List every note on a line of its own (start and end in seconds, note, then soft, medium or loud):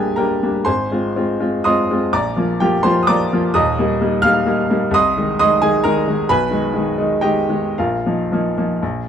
0.00 0.68 A#1 medium
0.00 0.18 G3 soft
0.00 0.18 A#3 soft
0.00 0.19 D4 soft
0.00 0.67 G4 medium
0.00 0.15 G#4 medium
0.00 0.68 D5 medium
0.00 0.17 G5 medium
0.00 0.16 G#5 medium
0.00 0.16 A#5 medium
0.00 0.68 D6 medium
0.16 0.39 G3 soft
0.16 0.40 A#3 soft
0.16 0.40 D4 soft
0.16 0.62 A#4 medium
0.16 0.62 G5 medium
0.16 0.65 A#5 medium
0.43 0.64 G3 soft
0.43 0.64 A#3 soft
0.43 0.64 D4 medium
0.65 0.89 G#1 medium
0.65 1.60 C5 medium
0.65 1.60 G#5 medium
0.65 1.64 C6 loud
0.92 1.13 G#3 soft
0.92 1.14 C4 soft
0.92 1.13 F4 soft
1.16 1.38 G#3 soft
1.16 1.38 C4 soft
1.16 1.38 F4 medium
1.40 1.62 G#3 soft
1.40 1.62 C4 medium
1.40 1.62 F4 medium
1.64 1.86 G#3 soft
1.64 1.87 C4 medium
1.64 1.87 F4 medium
1.64 2.09 D#5 medium
1.64 2.09 C6 medium
1.64 2.12 D#6 loud
1.90 2.11 G#3 medium
1.90 2.11 C4 medium
1.90 2.12 F4 medium
2.13 2.36 A#1 medium
2.13 2.57 D5 medium
2.13 2.57 A#5 medium
2.13 2.60 D6 medium
2.36 2.57 F3 soft
2.36 2.58 A#3 soft
2.36 2.58 F4 soft
2.60 2.82 F3 medium
2.60 2.82 A#3 medium
2.60 2.82 F4 medium
2.60 2.83 G4 medium
2.60 2.83 G5 medium
2.83 3.05 F3 medium
2.83 3.05 A#3 medium
2.83 3.06 F4 medium
2.83 3.00 C5 medium
2.83 3.01 C6 loud
3.03 3.08 D#6 medium
3.07 3.29 F3 medium
3.07 3.29 A#3 medium
3.07 3.30 F4 medium
3.07 3.51 D5 medium
3.07 3.51 A#5 medium
3.07 3.54 D6 loud
3.33 3.52 F3 medium
3.33 3.53 A#3 medium
3.33 3.53 F4 medium
3.54 3.76 D#1 medium
3.54 3.76 D#2 medium
3.54 4.18 D#5 medium
3.54 4.18 A#5 medium
3.54 4.21 D#6 loud
3.79 3.98 G3 medium
3.79 3.98 A#3 medium
3.79 3.98 D#4 medium
4.01 4.20 G3 medium
4.01 4.21 A#3 medium
4.01 4.21 D#4 medium
4.22 4.43 G3 medium
4.22 4.44 A#3 medium
4.22 4.44 D#4 medium
4.22 4.89 F5 medium
4.22 4.93 F6 loud
4.46 4.67 G3 medium
4.46 4.67 A#3 medium
4.46 4.68 D#4 medium
4.70 4.91 G3 medium
4.70 4.91 A#3 medium
4.70 4.91 D#4 medium
4.91 5.14 C2 medium
4.91 5.36 D#5 medium
4.91 5.36 C6 medium
4.91 5.38 D#6 loud
5.18 5.37 D#3 medium
5.18 5.37 G#3 soft
5.18 5.37 D#4 medium
5.39 5.59 D#3 medium
5.39 5.60 G#3 medium
5.39 5.60 D#4 medium
5.39 5.60 D#5 medium
5.39 5.60 C6 medium
5.39 5.61 D#6 loud
5.62 5.82 D#3 medium
5.62 5.82 G#3 medium
5.62 5.83 D#4 medium
5.62 5.83 G#4 medium
5.62 5.84 G#5 loud
5.84 6.04 D#3 medium
5.84 6.04 G#3 medium
5.84 6.05 D#4 medium
5.84 6.25 A#4 medium
5.84 6.28 A#5 loud
6.07 6.26 D#3 medium
6.07 6.27 G#3 medium
6.07 6.27 D#4 medium
6.29 6.50 B1 medium
6.29 7.19 B4 medium
6.29 7.19 G#5 medium
6.29 7.22 B5 loud
6.51 6.71 D#3 soft
6.51 6.71 G#3 medium
6.51 6.72 D#4 medium
6.74 6.95 D#3 medium
6.74 6.95 G#3 medium
6.74 6.96 D#4 medium
6.98 7.20 D#3 medium
6.98 7.20 G#3 soft
6.98 7.20 D#4 medium
7.21 7.46 D#3 medium
7.21 7.46 G#3 soft
7.21 7.46 D#4 medium
7.21 7.72 G4 medium
7.21 7.73 D#5 medium
7.21 7.76 G5 medium
7.49 7.74 D#3 soft
7.49 7.74 G#3 medium
7.49 7.75 D#4 medium
7.78 8.05 A#1 medium
7.78 8.78 F4 medium
7.78 8.79 A#4 soft
7.78 8.82 F5 medium
8.06 8.29 F3 soft
8.06 8.29 A#3 soft
8.06 8.29 D#4 soft
8.32 8.54 F3 medium
8.32 8.55 A#3 soft
8.32 8.55 D#4 medium
8.58 8.80 F3 soft
8.58 8.80 A#3 soft
8.58 8.80 D#4 medium
8.82 9.08 A#1 medium